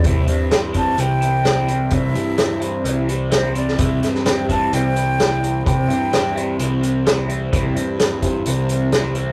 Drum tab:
HH |x-x-x-x-x-x-x-x-|x-x-x-x-x-x-x-x-|x-x-x-x-x-x-x-x-|x-x-x-x-x-x-x-x-|
SD |----o-------o---|----o-------o--o|--ooo-------o---|----o-------o---|
BD |o-----o---------|o---------------|o-----o---------|o---------------|

HH |x-x-x-x-x-x-x-x-|
SD |----o-------o---|
BD |o-----o---------|